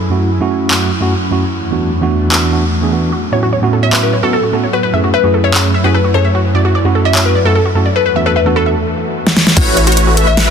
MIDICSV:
0, 0, Header, 1, 9, 480
1, 0, Start_track
1, 0, Key_signature, 3, "major"
1, 0, Tempo, 402685
1, 1805, Time_signature, 4, 2, 24, 8
1, 12520, End_track
2, 0, Start_track
2, 0, Title_t, "Synth pluck"
2, 0, Program_c, 0, 84
2, 11404, Note_on_c, 0, 73, 109
2, 11737, Note_off_c, 0, 73, 0
2, 11764, Note_on_c, 0, 73, 104
2, 12095, Note_off_c, 0, 73, 0
2, 12123, Note_on_c, 0, 76, 104
2, 12520, Note_off_c, 0, 76, 0
2, 12520, End_track
3, 0, Start_track
3, 0, Title_t, "Synth pluck"
3, 0, Program_c, 1, 84
3, 4564, Note_on_c, 1, 76, 89
3, 4781, Note_off_c, 1, 76, 0
3, 4804, Note_on_c, 1, 71, 82
3, 4979, Note_off_c, 1, 71, 0
3, 5043, Note_on_c, 1, 69, 87
3, 5120, Note_off_c, 1, 69, 0
3, 5163, Note_on_c, 1, 69, 71
3, 5241, Note_off_c, 1, 69, 0
3, 5641, Note_on_c, 1, 71, 88
3, 5721, Note_off_c, 1, 71, 0
3, 5760, Note_on_c, 1, 71, 74
3, 5839, Note_off_c, 1, 71, 0
3, 6123, Note_on_c, 1, 71, 90
3, 6298, Note_off_c, 1, 71, 0
3, 6483, Note_on_c, 1, 73, 83
3, 6561, Note_off_c, 1, 73, 0
3, 6603, Note_on_c, 1, 73, 74
3, 6681, Note_off_c, 1, 73, 0
3, 6964, Note_on_c, 1, 71, 86
3, 7041, Note_off_c, 1, 71, 0
3, 7086, Note_on_c, 1, 71, 75
3, 7163, Note_off_c, 1, 71, 0
3, 7322, Note_on_c, 1, 73, 90
3, 7612, Note_off_c, 1, 73, 0
3, 8407, Note_on_c, 1, 76, 87
3, 8622, Note_off_c, 1, 76, 0
3, 8648, Note_on_c, 1, 71, 83
3, 8820, Note_off_c, 1, 71, 0
3, 8885, Note_on_c, 1, 69, 87
3, 8962, Note_off_c, 1, 69, 0
3, 9003, Note_on_c, 1, 69, 72
3, 9082, Note_off_c, 1, 69, 0
3, 9485, Note_on_c, 1, 71, 88
3, 9562, Note_off_c, 1, 71, 0
3, 9604, Note_on_c, 1, 71, 74
3, 9681, Note_off_c, 1, 71, 0
3, 9846, Note_on_c, 1, 71, 86
3, 9922, Note_off_c, 1, 71, 0
3, 9964, Note_on_c, 1, 71, 74
3, 10042, Note_off_c, 1, 71, 0
3, 10203, Note_on_c, 1, 69, 87
3, 10565, Note_off_c, 1, 69, 0
3, 12242, Note_on_c, 1, 76, 94
3, 12460, Note_off_c, 1, 76, 0
3, 12483, Note_on_c, 1, 71, 88
3, 12520, Note_off_c, 1, 71, 0
3, 12520, End_track
4, 0, Start_track
4, 0, Title_t, "Synth arpeggio sound"
4, 0, Program_c, 2, 84
4, 3724, Note_on_c, 2, 66, 77
4, 3802, Note_off_c, 2, 66, 0
4, 3965, Note_on_c, 2, 73, 98
4, 4042, Note_off_c, 2, 73, 0
4, 4085, Note_on_c, 2, 66, 99
4, 4136, Note_off_c, 2, 66, 0
4, 4204, Note_on_c, 2, 73, 80
4, 4256, Note_off_c, 2, 73, 0
4, 4325, Note_on_c, 2, 66, 67
4, 4356, Note_off_c, 2, 66, 0
4, 4446, Note_on_c, 2, 69, 76
4, 4497, Note_off_c, 2, 69, 0
4, 4565, Note_on_c, 2, 73, 69
4, 4596, Note_off_c, 2, 73, 0
4, 4685, Note_on_c, 2, 71, 78
4, 4763, Note_off_c, 2, 71, 0
4, 4924, Note_on_c, 2, 73, 98
4, 4955, Note_off_c, 2, 73, 0
4, 5045, Note_on_c, 2, 66, 103
4, 5096, Note_off_c, 2, 66, 0
4, 5164, Note_on_c, 2, 69, 80
4, 5216, Note_off_c, 2, 69, 0
4, 5285, Note_on_c, 2, 66, 71
4, 5316, Note_off_c, 2, 66, 0
4, 5402, Note_on_c, 2, 69, 70
4, 5435, Note_off_c, 2, 69, 0
4, 5525, Note_on_c, 2, 73, 75
4, 5556, Note_off_c, 2, 73, 0
4, 5643, Note_on_c, 2, 66, 76
4, 5722, Note_off_c, 2, 66, 0
4, 5884, Note_on_c, 2, 76, 97
4, 5962, Note_off_c, 2, 76, 0
4, 6005, Note_on_c, 2, 66, 97
4, 6056, Note_off_c, 2, 66, 0
4, 6123, Note_on_c, 2, 76, 82
4, 6176, Note_off_c, 2, 76, 0
4, 6246, Note_on_c, 2, 66, 74
4, 6276, Note_off_c, 2, 66, 0
4, 6365, Note_on_c, 2, 69, 79
4, 6417, Note_off_c, 2, 69, 0
4, 6486, Note_on_c, 2, 76, 73
4, 6516, Note_off_c, 2, 76, 0
4, 6606, Note_on_c, 2, 73, 82
4, 6683, Note_off_c, 2, 73, 0
4, 6845, Note_on_c, 2, 76, 101
4, 6876, Note_off_c, 2, 76, 0
4, 6965, Note_on_c, 2, 66, 105
4, 7016, Note_off_c, 2, 66, 0
4, 7083, Note_on_c, 2, 69, 80
4, 7136, Note_off_c, 2, 69, 0
4, 7204, Note_on_c, 2, 66, 73
4, 7236, Note_off_c, 2, 66, 0
4, 7325, Note_on_c, 2, 69, 68
4, 7356, Note_off_c, 2, 69, 0
4, 7445, Note_on_c, 2, 76, 76
4, 7476, Note_off_c, 2, 76, 0
4, 7566, Note_on_c, 2, 66, 80
4, 7643, Note_off_c, 2, 66, 0
4, 7805, Note_on_c, 2, 74, 96
4, 7883, Note_off_c, 2, 74, 0
4, 7925, Note_on_c, 2, 66, 103
4, 7977, Note_off_c, 2, 66, 0
4, 8046, Note_on_c, 2, 74, 83
4, 8097, Note_off_c, 2, 74, 0
4, 8167, Note_on_c, 2, 66, 71
4, 8197, Note_off_c, 2, 66, 0
4, 8285, Note_on_c, 2, 69, 80
4, 8337, Note_off_c, 2, 69, 0
4, 8406, Note_on_c, 2, 74, 74
4, 8436, Note_off_c, 2, 74, 0
4, 8524, Note_on_c, 2, 73, 84
4, 8602, Note_off_c, 2, 73, 0
4, 8763, Note_on_c, 2, 74, 94
4, 8795, Note_off_c, 2, 74, 0
4, 8885, Note_on_c, 2, 66, 99
4, 8936, Note_off_c, 2, 66, 0
4, 9004, Note_on_c, 2, 69, 83
4, 9056, Note_off_c, 2, 69, 0
4, 9125, Note_on_c, 2, 66, 74
4, 9156, Note_off_c, 2, 66, 0
4, 9242, Note_on_c, 2, 69, 68
4, 9274, Note_off_c, 2, 69, 0
4, 9365, Note_on_c, 2, 74, 73
4, 9396, Note_off_c, 2, 74, 0
4, 9484, Note_on_c, 2, 69, 80
4, 9562, Note_off_c, 2, 69, 0
4, 9725, Note_on_c, 2, 76, 100
4, 9803, Note_off_c, 2, 76, 0
4, 9846, Note_on_c, 2, 69, 100
4, 9897, Note_off_c, 2, 69, 0
4, 9965, Note_on_c, 2, 76, 84
4, 10017, Note_off_c, 2, 76, 0
4, 10084, Note_on_c, 2, 69, 72
4, 10116, Note_off_c, 2, 69, 0
4, 10205, Note_on_c, 2, 71, 77
4, 10257, Note_off_c, 2, 71, 0
4, 10325, Note_on_c, 2, 76, 76
4, 10356, Note_off_c, 2, 76, 0
4, 11403, Note_on_c, 2, 66, 82
4, 11482, Note_off_c, 2, 66, 0
4, 11643, Note_on_c, 2, 73, 104
4, 11722, Note_off_c, 2, 73, 0
4, 11763, Note_on_c, 2, 66, 103
4, 11815, Note_off_c, 2, 66, 0
4, 11884, Note_on_c, 2, 73, 90
4, 11936, Note_off_c, 2, 73, 0
4, 12005, Note_on_c, 2, 66, 76
4, 12036, Note_off_c, 2, 66, 0
4, 12123, Note_on_c, 2, 69, 82
4, 12176, Note_off_c, 2, 69, 0
4, 12244, Note_on_c, 2, 73, 76
4, 12276, Note_off_c, 2, 73, 0
4, 12363, Note_on_c, 2, 71, 83
4, 12442, Note_off_c, 2, 71, 0
4, 12520, End_track
5, 0, Start_track
5, 0, Title_t, "Supersaw synth"
5, 0, Program_c, 3, 81
5, 11403, Note_on_c, 3, 64, 91
5, 11403, Note_on_c, 3, 66, 88
5, 11403, Note_on_c, 3, 73, 104
5, 11404, Note_on_c, 3, 57, 91
5, 11404, Note_on_c, 3, 71, 88
5, 11736, Note_off_c, 3, 57, 0
5, 11736, Note_off_c, 3, 64, 0
5, 11736, Note_off_c, 3, 66, 0
5, 11736, Note_off_c, 3, 71, 0
5, 11736, Note_off_c, 3, 73, 0
5, 11764, Note_on_c, 3, 57, 92
5, 11764, Note_on_c, 3, 64, 82
5, 11765, Note_on_c, 3, 66, 80
5, 11765, Note_on_c, 3, 71, 80
5, 11765, Note_on_c, 3, 73, 101
5, 12095, Note_off_c, 3, 57, 0
5, 12095, Note_off_c, 3, 64, 0
5, 12096, Note_off_c, 3, 66, 0
5, 12096, Note_off_c, 3, 71, 0
5, 12096, Note_off_c, 3, 73, 0
5, 12123, Note_on_c, 3, 57, 95
5, 12123, Note_on_c, 3, 76, 103
5, 12124, Note_on_c, 3, 64, 86
5, 12124, Note_on_c, 3, 66, 83
5, 12124, Note_on_c, 3, 71, 83
5, 12520, Note_off_c, 3, 57, 0
5, 12520, Note_off_c, 3, 64, 0
5, 12520, Note_off_c, 3, 66, 0
5, 12520, Note_off_c, 3, 71, 0
5, 12520, Note_off_c, 3, 76, 0
5, 12520, End_track
6, 0, Start_track
6, 0, Title_t, "Tine electric piano"
6, 0, Program_c, 4, 4
6, 113, Note_on_c, 4, 42, 70
6, 120, Note_on_c, 4, 57, 62
6, 125, Note_on_c, 4, 61, 63
6, 131, Note_on_c, 4, 64, 61
6, 137, Note_on_c, 4, 66, 77
6, 339, Note_off_c, 4, 42, 0
6, 342, Note_off_c, 4, 57, 0
6, 345, Note_off_c, 4, 61, 0
6, 348, Note_off_c, 4, 64, 0
6, 351, Note_off_c, 4, 66, 0
6, 474, Note_on_c, 4, 42, 85
6, 480, Note_on_c, 4, 57, 79
6, 486, Note_on_c, 4, 61, 80
6, 492, Note_on_c, 4, 64, 80
6, 497, Note_on_c, 4, 66, 97
6, 810, Note_off_c, 4, 42, 0
6, 814, Note_off_c, 4, 57, 0
6, 816, Note_off_c, 4, 61, 0
6, 819, Note_off_c, 4, 64, 0
6, 822, Note_off_c, 4, 66, 0
6, 832, Note_on_c, 4, 42, 79
6, 838, Note_on_c, 4, 57, 74
6, 844, Note_on_c, 4, 61, 73
6, 850, Note_on_c, 4, 64, 72
6, 857, Note_on_c, 4, 66, 86
6, 1058, Note_off_c, 4, 42, 0
6, 1062, Note_off_c, 4, 57, 0
6, 1065, Note_off_c, 4, 61, 0
6, 1067, Note_off_c, 4, 64, 0
6, 1071, Note_off_c, 4, 66, 0
6, 1193, Note_on_c, 4, 42, 91
6, 1200, Note_on_c, 4, 57, 84
6, 1205, Note_on_c, 4, 61, 80
6, 1211, Note_on_c, 4, 64, 83
6, 1217, Note_on_c, 4, 66, 101
6, 1336, Note_off_c, 4, 42, 0
6, 1339, Note_off_c, 4, 57, 0
6, 1342, Note_off_c, 4, 61, 0
6, 1345, Note_off_c, 4, 64, 0
6, 1348, Note_off_c, 4, 66, 0
6, 1554, Note_on_c, 4, 42, 80
6, 1559, Note_on_c, 4, 57, 73
6, 1564, Note_on_c, 4, 61, 76
6, 1571, Note_on_c, 4, 64, 73
6, 1577, Note_on_c, 4, 66, 89
6, 1698, Note_off_c, 4, 42, 0
6, 1700, Note_off_c, 4, 57, 0
6, 1703, Note_off_c, 4, 61, 0
6, 1706, Note_off_c, 4, 64, 0
6, 1709, Note_off_c, 4, 66, 0
6, 2034, Note_on_c, 4, 52, 65
6, 2039, Note_on_c, 4, 57, 65
6, 2046, Note_on_c, 4, 59, 62
6, 2052, Note_on_c, 4, 62, 63
6, 2057, Note_on_c, 4, 66, 74
6, 2259, Note_off_c, 4, 52, 0
6, 2262, Note_off_c, 4, 57, 0
6, 2265, Note_off_c, 4, 59, 0
6, 2268, Note_off_c, 4, 62, 0
6, 2271, Note_off_c, 4, 66, 0
6, 2394, Note_on_c, 4, 52, 88
6, 2401, Note_on_c, 4, 57, 82
6, 2406, Note_on_c, 4, 59, 78
6, 2412, Note_on_c, 4, 62, 77
6, 2418, Note_on_c, 4, 66, 96
6, 2731, Note_off_c, 4, 52, 0
6, 2734, Note_off_c, 4, 57, 0
6, 2736, Note_off_c, 4, 59, 0
6, 2739, Note_off_c, 4, 62, 0
6, 2743, Note_off_c, 4, 66, 0
6, 2753, Note_on_c, 4, 52, 79
6, 2758, Note_on_c, 4, 57, 71
6, 2765, Note_on_c, 4, 59, 74
6, 2770, Note_on_c, 4, 62, 74
6, 2776, Note_on_c, 4, 66, 83
6, 2975, Note_off_c, 4, 52, 0
6, 2978, Note_off_c, 4, 57, 0
6, 2981, Note_off_c, 4, 59, 0
6, 2984, Note_off_c, 4, 62, 0
6, 2987, Note_off_c, 4, 66, 0
6, 2993, Note_on_c, 4, 52, 69
6, 2998, Note_on_c, 4, 57, 64
6, 3004, Note_on_c, 4, 59, 64
6, 3010, Note_on_c, 4, 62, 64
6, 3016, Note_on_c, 4, 66, 80
6, 3137, Note_off_c, 4, 52, 0
6, 3140, Note_off_c, 4, 57, 0
6, 3143, Note_off_c, 4, 59, 0
6, 3146, Note_off_c, 4, 62, 0
6, 3149, Note_off_c, 4, 66, 0
6, 3355, Note_on_c, 4, 52, 79
6, 3360, Note_on_c, 4, 57, 73
6, 3367, Note_on_c, 4, 59, 70
6, 3372, Note_on_c, 4, 62, 72
6, 3379, Note_on_c, 4, 68, 86
6, 3461, Note_off_c, 4, 52, 0
6, 3464, Note_off_c, 4, 57, 0
6, 3467, Note_off_c, 4, 59, 0
6, 3470, Note_off_c, 4, 62, 0
6, 3473, Note_off_c, 4, 68, 0
6, 3473, Note_on_c, 4, 52, 67
6, 3479, Note_on_c, 4, 57, 65
6, 3485, Note_on_c, 4, 59, 61
6, 3491, Note_on_c, 4, 62, 63
6, 3497, Note_on_c, 4, 66, 78
6, 3699, Note_off_c, 4, 52, 0
6, 3702, Note_off_c, 4, 57, 0
6, 3705, Note_off_c, 4, 59, 0
6, 3708, Note_off_c, 4, 62, 0
6, 3711, Note_off_c, 4, 66, 0
6, 3954, Note_on_c, 4, 45, 65
6, 3959, Note_on_c, 4, 59, 62
6, 3965, Note_on_c, 4, 61, 60
6, 3970, Note_on_c, 4, 64, 63
6, 3977, Note_on_c, 4, 66, 77
6, 4179, Note_off_c, 4, 45, 0
6, 4182, Note_off_c, 4, 59, 0
6, 4185, Note_off_c, 4, 61, 0
6, 4187, Note_off_c, 4, 64, 0
6, 4191, Note_off_c, 4, 66, 0
6, 4314, Note_on_c, 4, 45, 85
6, 4320, Note_on_c, 4, 59, 77
6, 4325, Note_on_c, 4, 61, 78
6, 4332, Note_on_c, 4, 64, 78
6, 4338, Note_on_c, 4, 66, 94
6, 4651, Note_off_c, 4, 45, 0
6, 4653, Note_off_c, 4, 59, 0
6, 4656, Note_off_c, 4, 61, 0
6, 4659, Note_off_c, 4, 64, 0
6, 4662, Note_off_c, 4, 66, 0
6, 4673, Note_on_c, 4, 45, 79
6, 4679, Note_on_c, 4, 59, 74
6, 4685, Note_on_c, 4, 61, 74
6, 4691, Note_on_c, 4, 64, 75
6, 4697, Note_on_c, 4, 66, 85
6, 4899, Note_off_c, 4, 45, 0
6, 4902, Note_off_c, 4, 59, 0
6, 4905, Note_off_c, 4, 61, 0
6, 4908, Note_off_c, 4, 64, 0
6, 4911, Note_off_c, 4, 66, 0
6, 5034, Note_on_c, 4, 45, 91
6, 5039, Note_on_c, 4, 59, 85
6, 5046, Note_on_c, 4, 61, 85
6, 5051, Note_on_c, 4, 64, 82
6, 5058, Note_on_c, 4, 66, 101
6, 5176, Note_off_c, 4, 45, 0
6, 5179, Note_off_c, 4, 59, 0
6, 5182, Note_off_c, 4, 61, 0
6, 5185, Note_off_c, 4, 64, 0
6, 5188, Note_off_c, 4, 66, 0
6, 5393, Note_on_c, 4, 45, 79
6, 5398, Note_on_c, 4, 59, 76
6, 5405, Note_on_c, 4, 61, 74
6, 5411, Note_on_c, 4, 64, 72
6, 5417, Note_on_c, 4, 66, 89
6, 5537, Note_off_c, 4, 45, 0
6, 5540, Note_off_c, 4, 59, 0
6, 5543, Note_off_c, 4, 61, 0
6, 5546, Note_off_c, 4, 64, 0
6, 5549, Note_off_c, 4, 66, 0
6, 5873, Note_on_c, 4, 42, 69
6, 5880, Note_on_c, 4, 57, 64
6, 5886, Note_on_c, 4, 61, 63
6, 5892, Note_on_c, 4, 64, 60
6, 5897, Note_on_c, 4, 68, 74
6, 6099, Note_off_c, 4, 42, 0
6, 6102, Note_off_c, 4, 57, 0
6, 6105, Note_off_c, 4, 61, 0
6, 6108, Note_off_c, 4, 64, 0
6, 6111, Note_off_c, 4, 68, 0
6, 6234, Note_on_c, 4, 42, 86
6, 6240, Note_on_c, 4, 57, 81
6, 6246, Note_on_c, 4, 61, 82
6, 6251, Note_on_c, 4, 64, 81
6, 6258, Note_on_c, 4, 68, 98
6, 6571, Note_off_c, 4, 42, 0
6, 6574, Note_off_c, 4, 57, 0
6, 6576, Note_off_c, 4, 61, 0
6, 6579, Note_off_c, 4, 64, 0
6, 6582, Note_off_c, 4, 68, 0
6, 6593, Note_on_c, 4, 42, 81
6, 6599, Note_on_c, 4, 57, 75
6, 6605, Note_on_c, 4, 61, 73
6, 6611, Note_on_c, 4, 64, 74
6, 6618, Note_on_c, 4, 68, 88
6, 6819, Note_off_c, 4, 42, 0
6, 6822, Note_off_c, 4, 57, 0
6, 6825, Note_off_c, 4, 61, 0
6, 6828, Note_off_c, 4, 64, 0
6, 6831, Note_off_c, 4, 68, 0
6, 6954, Note_on_c, 4, 42, 87
6, 6960, Note_on_c, 4, 57, 85
6, 6966, Note_on_c, 4, 61, 86
6, 6972, Note_on_c, 4, 64, 85
6, 6978, Note_on_c, 4, 68, 102
6, 7096, Note_off_c, 4, 42, 0
6, 7099, Note_off_c, 4, 57, 0
6, 7103, Note_off_c, 4, 61, 0
6, 7105, Note_off_c, 4, 64, 0
6, 7108, Note_off_c, 4, 68, 0
6, 7311, Note_on_c, 4, 42, 78
6, 7317, Note_on_c, 4, 57, 72
6, 7324, Note_on_c, 4, 61, 76
6, 7329, Note_on_c, 4, 64, 73
6, 7336, Note_on_c, 4, 68, 92
6, 7456, Note_off_c, 4, 42, 0
6, 7459, Note_off_c, 4, 57, 0
6, 7463, Note_off_c, 4, 61, 0
6, 7465, Note_off_c, 4, 64, 0
6, 7469, Note_off_c, 4, 68, 0
6, 7792, Note_on_c, 4, 42, 71
6, 7798, Note_on_c, 4, 57, 66
6, 7804, Note_on_c, 4, 61, 64
6, 7810, Note_on_c, 4, 64, 61
6, 7815, Note_on_c, 4, 66, 78
6, 8019, Note_off_c, 4, 42, 0
6, 8022, Note_off_c, 4, 57, 0
6, 8024, Note_off_c, 4, 61, 0
6, 8027, Note_off_c, 4, 64, 0
6, 8030, Note_off_c, 4, 66, 0
6, 8154, Note_on_c, 4, 42, 88
6, 8160, Note_on_c, 4, 57, 80
6, 8166, Note_on_c, 4, 61, 82
6, 8172, Note_on_c, 4, 64, 84
6, 8177, Note_on_c, 4, 66, 99
6, 8490, Note_off_c, 4, 42, 0
6, 8493, Note_off_c, 4, 57, 0
6, 8496, Note_off_c, 4, 61, 0
6, 8499, Note_off_c, 4, 64, 0
6, 8502, Note_off_c, 4, 66, 0
6, 8511, Note_on_c, 4, 42, 80
6, 8518, Note_on_c, 4, 57, 71
6, 8524, Note_on_c, 4, 61, 75
6, 8530, Note_on_c, 4, 64, 72
6, 8536, Note_on_c, 4, 66, 91
6, 8738, Note_off_c, 4, 42, 0
6, 8742, Note_off_c, 4, 57, 0
6, 8745, Note_off_c, 4, 61, 0
6, 8747, Note_off_c, 4, 64, 0
6, 8750, Note_off_c, 4, 66, 0
6, 8874, Note_on_c, 4, 42, 92
6, 8880, Note_on_c, 4, 57, 86
6, 8886, Note_on_c, 4, 61, 82
6, 8892, Note_on_c, 4, 64, 82
6, 8898, Note_on_c, 4, 66, 100
6, 9016, Note_off_c, 4, 42, 0
6, 9019, Note_off_c, 4, 57, 0
6, 9022, Note_off_c, 4, 61, 0
6, 9025, Note_off_c, 4, 64, 0
6, 9029, Note_off_c, 4, 66, 0
6, 9232, Note_on_c, 4, 42, 79
6, 9239, Note_on_c, 4, 57, 76
6, 9244, Note_on_c, 4, 61, 76
6, 9250, Note_on_c, 4, 64, 74
6, 9256, Note_on_c, 4, 66, 88
6, 9377, Note_off_c, 4, 42, 0
6, 9380, Note_off_c, 4, 57, 0
6, 9383, Note_off_c, 4, 61, 0
6, 9386, Note_off_c, 4, 64, 0
6, 9389, Note_off_c, 4, 66, 0
6, 9714, Note_on_c, 4, 52, 68
6, 9720, Note_on_c, 4, 57, 63
6, 9726, Note_on_c, 4, 59, 64
6, 9731, Note_on_c, 4, 62, 67
6, 9737, Note_on_c, 4, 66, 75
6, 9939, Note_off_c, 4, 52, 0
6, 9942, Note_off_c, 4, 57, 0
6, 9945, Note_off_c, 4, 59, 0
6, 9948, Note_off_c, 4, 62, 0
6, 9951, Note_off_c, 4, 66, 0
6, 10074, Note_on_c, 4, 52, 89
6, 10079, Note_on_c, 4, 57, 80
6, 10086, Note_on_c, 4, 59, 81
6, 10092, Note_on_c, 4, 62, 83
6, 10097, Note_on_c, 4, 66, 96
6, 10411, Note_off_c, 4, 52, 0
6, 10413, Note_off_c, 4, 57, 0
6, 10416, Note_off_c, 4, 59, 0
6, 10419, Note_off_c, 4, 62, 0
6, 10422, Note_off_c, 4, 66, 0
6, 12520, End_track
7, 0, Start_track
7, 0, Title_t, "Analog synth pad"
7, 0, Program_c, 5, 89
7, 0, Note_on_c, 5, 42, 80
7, 0, Note_on_c, 5, 54, 70
7, 0, Note_on_c, 5, 61, 72
7, 0, Note_on_c, 5, 64, 69
7, 1757, Note_off_c, 5, 54, 0
7, 1767, Note_off_c, 5, 42, 0
7, 1767, Note_off_c, 5, 64, 0
7, 1787, Note_off_c, 5, 61, 0
7, 1805, Note_on_c, 5, 52, 73
7, 1805, Note_on_c, 5, 57, 70
7, 1805, Note_on_c, 5, 62, 83
7, 1806, Note_on_c, 5, 40, 80
7, 3706, Note_off_c, 5, 52, 0
7, 3706, Note_off_c, 5, 57, 0
7, 3706, Note_off_c, 5, 62, 0
7, 3707, Note_off_c, 5, 40, 0
7, 3722, Note_on_c, 5, 45, 76
7, 3723, Note_on_c, 5, 59, 72
7, 3724, Note_on_c, 5, 54, 75
7, 3724, Note_on_c, 5, 61, 88
7, 5624, Note_off_c, 5, 45, 0
7, 5625, Note_off_c, 5, 59, 0
7, 5626, Note_off_c, 5, 61, 0
7, 5645, Note_on_c, 5, 42, 79
7, 5645, Note_on_c, 5, 57, 73
7, 5646, Note_on_c, 5, 64, 90
7, 7546, Note_off_c, 5, 57, 0
7, 7568, Note_on_c, 5, 61, 73
7, 9437, Note_off_c, 5, 54, 0
7, 9447, Note_off_c, 5, 42, 0
7, 9447, Note_off_c, 5, 64, 0
7, 9467, Note_off_c, 5, 61, 0
7, 9485, Note_on_c, 5, 62, 82
7, 9486, Note_on_c, 5, 40, 77
7, 9486, Note_on_c, 5, 52, 69
7, 9486, Note_on_c, 5, 57, 68
7, 10435, Note_off_c, 5, 62, 0
7, 10436, Note_off_c, 5, 40, 0
7, 10436, Note_off_c, 5, 52, 0
7, 10436, Note_off_c, 5, 57, 0
7, 12520, End_track
8, 0, Start_track
8, 0, Title_t, "808-style bass"
8, 0, Program_c, 6, 38
8, 11403, Note_on_c, 6, 33, 101
8, 12520, Note_off_c, 6, 33, 0
8, 12520, End_track
9, 0, Start_track
9, 0, Title_t, "Drums"
9, 846, Note_on_c, 9, 39, 91
9, 965, Note_off_c, 9, 39, 0
9, 2765, Note_on_c, 9, 39, 87
9, 2884, Note_off_c, 9, 39, 0
9, 4686, Note_on_c, 9, 39, 88
9, 4805, Note_off_c, 9, 39, 0
9, 6606, Note_on_c, 9, 39, 83
9, 6725, Note_off_c, 9, 39, 0
9, 8524, Note_on_c, 9, 39, 86
9, 8644, Note_off_c, 9, 39, 0
9, 11045, Note_on_c, 9, 38, 48
9, 11164, Note_off_c, 9, 38, 0
9, 11164, Note_on_c, 9, 38, 78
9, 11283, Note_off_c, 9, 38, 0
9, 11285, Note_on_c, 9, 38, 78
9, 11403, Note_on_c, 9, 36, 118
9, 11404, Note_on_c, 9, 42, 82
9, 11404, Note_on_c, 9, 49, 109
9, 11405, Note_off_c, 9, 38, 0
9, 11523, Note_off_c, 9, 36, 0
9, 11523, Note_off_c, 9, 42, 0
9, 11523, Note_off_c, 9, 49, 0
9, 11645, Note_on_c, 9, 42, 69
9, 11764, Note_off_c, 9, 42, 0
9, 11766, Note_on_c, 9, 42, 50
9, 11825, Note_off_c, 9, 42, 0
9, 11825, Note_on_c, 9, 42, 70
9, 11885, Note_off_c, 9, 42, 0
9, 11885, Note_on_c, 9, 42, 85
9, 12004, Note_off_c, 9, 42, 0
9, 12125, Note_on_c, 9, 42, 69
9, 12244, Note_off_c, 9, 42, 0
9, 12365, Note_on_c, 9, 38, 123
9, 12365, Note_on_c, 9, 42, 84
9, 12484, Note_off_c, 9, 38, 0
9, 12484, Note_off_c, 9, 42, 0
9, 12520, End_track
0, 0, End_of_file